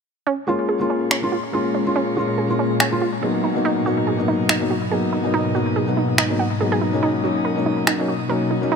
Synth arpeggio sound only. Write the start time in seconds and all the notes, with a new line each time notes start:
0.27 C#4
0.48 F4
0.69 G#4
0.90 C#4
1.11 C#4
1.32 F4
1.53 G#4
1.75 C#4
1.96 C#4
2.17 F4
2.38 G#4
2.59 C#4
2.80 C#4
3.01 F4
3.23 G#4
3.44 D#4
3.65 D#4
3.86 F#4
4.07 G#4
4.28 D#4
4.49 D#4
4.70 F#4
4.91 G#4
5.13 D#4
5.34 D#4
5.55 F#4
5.76 G#4
5.97 D#4
6.18 D#4
6.39 F#5
6.61 G#4
6.72 G#4
6.82 D#4
7.03 D#4
7.24 F#4
7.45 A#4
7.66 D#4
7.87 D#4
8.08 F#4
8.29 A#4
8.51 D#4
8.72 D#4